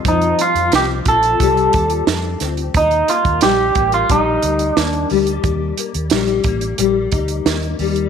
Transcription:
0.00 1.39 G3 medium
0.00 0.71 C4 medium
0.00 0.38 F4 medium
0.00 1.72 A4 medium
0.05 0.32 F2 medium
0.05 2.74 F3 medium
0.05 0.41 D#4 medium
0.05 kick loud
0.05 closed hi-hat medium
0.21 closed hi-hat soft
0.39 1.05 F4 medium
0.39 0.71 F4 medium
0.39 closed hi-hat medium
0.55 0.69 F2 medium
0.55 closed hi-hat soft
0.72 0.99 C2 medium
0.72 2.39 C4 medium
0.72 0.84 G4 medium
0.72 snare loud
0.72 closed hi-hat medium
1.05 1.33 A#1 medium
1.05 2.05 F4 medium
1.05 2.04 A4 medium
1.05 kick medium
1.05 closed hi-hat medium
1.23 closed hi-hat soft
1.40 1.67 C2 medium
1.40 3.41 G3 medium
1.40 kick medium
1.40 closed hi-hat medium
1.57 closed hi-hat soft
1.73 2.01 D#2 medium
1.73 2.81 A4 medium
1.73 kick medium
1.73 closed hi-hat medium
1.90 closed hi-hat soft
2.07 2.34 F2 medium
2.07 2.81 F4 medium
2.07 snare loud
2.07 closed hi-hat medium
2.40 2.68 D2 medium
2.40 2.81 C4 medium
2.40 snare soft
2.40 closed hi-hat medium
2.57 closed hi-hat soft
2.74 3.01 D#2 medium
2.74 3.10 D#4 medium
2.74 kick loud
2.74 closed hi-hat medium
2.91 closed hi-hat soft
3.08 3.74 A#3 medium
3.08 3.42 F4 medium
3.08 closed hi-hat medium
3.25 3.38 D#2 medium
3.25 kick medium
3.25 closed hi-hat soft
3.41 3.69 A#1 medium
3.41 4.09 G3 medium
3.41 3.94 G4 medium
3.41 snare loud
3.41 closed hi-hat medium
3.75 4.02 A1 medium
3.75 4.76 A#3 medium
3.75 kick medium
3.75 closed hi-hat medium
3.92 4.09 F4 medium
3.92 closed hi-hat soft
4.09 4.37 A#1 medium
4.09 5.10 G3 medium
4.09 4.75 D#4 medium
4.09 kick medium
4.09 closed hi-hat medium
4.42 4.70 D2 medium
4.42 7.10 D#4 medium
4.42 closed hi-hat medium
4.59 closed hi-hat soft
4.75 5.04 D#2 medium
4.75 5.77 A#3 medium
4.75 5.07 D4 medium
4.75 snare medium
4.75 closed hi-hat medium
4.93 closed hi-hat soft
5.10 5.38 D2 medium
5.10 6.11 G3 medium
5.10 open hi-hat soft
5.27 closed hi-hat soft
5.44 5.71 D#2 medium
5.44 kick loud
5.44 closed hi-hat medium
5.77 6.43 A#3 medium
5.77 closed hi-hat medium
5.94 6.08 D#2 medium
5.94 closed hi-hat soft
6.10 6.38 A#1 medium
6.10 6.77 G3 medium
6.10 snare loud
6.10 closed hi-hat medium
6.27 closed hi-hat soft
6.44 6.72 A1 medium
6.44 7.44 A#3 medium
6.44 kick medium
6.44 closed hi-hat medium
6.61 closed hi-hat soft
6.78 7.06 A#1 medium
6.78 7.79 G3 medium
6.78 closed hi-hat loud
7.11 7.39 D2 medium
7.11 8.09 D#4 medium
7.11 kick medium
7.11 closed hi-hat medium
7.28 closed hi-hat soft
7.45 7.73 D#2 medium
7.45 8.09 A#3 medium
7.45 snare loud
7.45 closed hi-hat medium
7.62 closed hi-hat soft
7.79 8.06 D#2 medium
7.79 8.09 G3 medium
7.79 open hi-hat soft
7.96 closed hi-hat soft

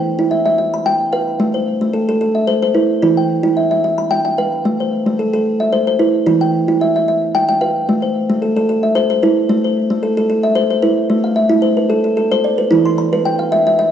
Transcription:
0.00 1.37 E3 medium
0.00 0.31 G5 soft
0.19 0.46 E4 medium
0.31 0.44 E5 soft
0.46 0.57 E5 medium
0.58 1.00 E5 soft
0.74 1.13 B5 soft
0.86 1.13 G5 medium
1.13 1.40 B4 medium
1.13 1.54 F5 soft
1.40 1.80 A3 medium
1.54 1.94 C5 soft
1.81 2.08 A3 medium
1.93 2.08 A4 soft
2.09 2.20 A4 medium
2.21 2.63 A4 medium
2.35 2.75 E5 soft
2.48 2.61 C5 medium
2.63 3.02 C5 medium
2.74 3.01 E4 medium
2.74 3.17 B4 soft
3.02 4.62 E3 medium
3.02 3.30 E4 medium
3.17 3.57 G5 soft
3.43 3.71 E4 medium
3.57 3.70 E5 soft
3.71 3.83 E5 medium
3.84 4.25 E5 soft
3.98 4.38 B5 soft
4.11 4.24 G5 medium
4.25 4.65 G5 medium
4.38 4.65 B4 medium
4.38 4.80 F5 soft
4.65 5.05 A3 medium
4.80 5.19 C5 soft
5.06 5.33 A3 medium
5.19 5.32 A4 soft
5.33 5.60 A4 medium
5.60 6.00 E5 medium
5.72 5.86 C5 medium
5.87 6.27 C5 medium
5.99 6.25 E4 medium
5.99 6.41 B4 soft
6.26 7.85 E3 medium
6.26 6.53 E4 medium
6.41 6.81 G5 soft
6.68 6.95 E4 medium
6.81 6.95 E5 medium
6.96 7.07 E5 medium
7.08 7.49 E5 soft
7.35 7.47 G5 medium
7.49 7.88 G5 medium
7.61 7.88 B4 medium
7.61 8.02 F5 soft
7.89 8.28 A3 medium
8.02 8.42 C5 soft
8.30 8.56 A3 medium
8.42 8.55 A4 medium
8.56 8.68 A4 medium
8.69 9.10 A4 soft
8.83 9.22 E5 soft
8.95 9.09 C5 medium
9.10 9.49 C5 medium
9.23 9.50 E4 medium
9.23 9.64 B4 soft
9.49 9.76 A3 medium
9.64 10.03 C5 soft
9.90 10.17 A3 medium
10.03 10.16 A4 medium
10.17 10.28 A4 medium
10.30 10.71 A4 medium
10.43 10.83 E5 medium
10.55 10.69 C5 medium
10.70 11.10 C5 medium
10.82 11.10 E4 medium
10.82 11.24 B4 soft
11.10 11.37 A3 medium
11.24 11.63 F5 soft
11.36 11.78 E5 medium
11.50 11.77 E4 medium
11.62 12.04 C5 medium
11.77 12.17 B4 soft
11.90 12.03 A4 medium
12.04 12.16 A4 soft
12.17 12.58 A4 medium
12.31 12.58 C5 medium
12.44 12.85 D5 medium
12.58 12.85 B4 medium
12.71 13.91 E3 medium
12.71 12.98 E4 medium
12.86 13.25 C6 medium
12.98 13.39 B5 medium
13.13 13.39 B4 medium
13.26 13.66 G5 medium
13.39 13.79 F5 medium
13.52 13.66 E5 medium
13.67 13.78 E5 medium
13.79 13.91 E5 medium

